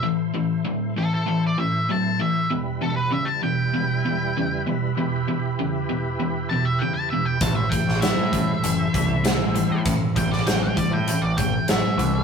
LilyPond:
<<
  \new Staff \with { instrumentName = "Lead electric guitar" } { \time 4/4 \key a \dorian \tempo 4 = 98 r4. a'16 a'8 d''16 e''8 a''8 e''8 | r8 a'16 b'16 e''16 a''16 g''2 r8 | r2 r8 a''16 e''16 g''16 a''16 e''16 g''16 | a''16 e''16 g''8 e''2. |
r8 g''16 d''16 g''16 g''16 d''16 g''16 g''16 d''16 g''8 e''4 | }
  \new Staff \with { instrumentName = "Tonewheel organ" } { \time 4/4 \key a \dorian <a e' c''>1 | <g e' b'>1 | <e' g' b'>1 | <a e' c''>1 |
<a c' e'>1 | }
  \new Staff \with { instrumentName = "Overdriven electric guitar" } { \clef bass \time 4/4 \key a \dorian <a, e>8 <a, e>8 <a, fis>8 <a, e>8 <a, e>8 <a, e>8 <a, fis>8 <a, e>8 | <e, b,>8 <e, b,>8 <e, cis>8 <e, b,>8 <e, b,>8 <e, b,>8 <e, cis>8 <e, b,>8 | <e, b,>8 <e, b,>8 <e, cis>8 <e, b,>8 <e, b,>8 <e, b,>8 <e, cis>8 <e, b,>8 | <a, e>8 <a, e>8 <a, fis>8 <a, e>8 <a, e>8 <a, e>8 <a, fis>8 <a, e>8 |
<a, e>8 <a, e>8 <a, fis>8 <a, e>8 <a, e>8 <a, e>8 <a, fis>8 <a, e>8 | }
  \new Staff \with { instrumentName = "Picked electric bass" } { \clef bass \time 4/4 \key a \dorian r1 | r1 | r1 | a,,8 r16 a,,8 a,8. fis,,8 c,8. a,,8 a,16~ |
a,16 r16 a,,8 a,,8 r16 a,8 a,,8. a,,16 r16 c,8 | }
  \new DrumStaff \with { instrumentName = "Drums" } \drummode { \time 4/4 r4 r4 r4 r4 | r4 r4 r4 r4 | r4 r4 r4 r4 | <hh bd>8 <hh bd>16 sn16 <hh sn>8 <hh bd>8 hh8 <hh bd>8 <hh sn>8 hh8 |
<hh bd>8 <hh bd>16 sn16 <hh sn>8 <hh bd>8 hh8 <hh bd>8 <hh sn>8 hh8 | }
>>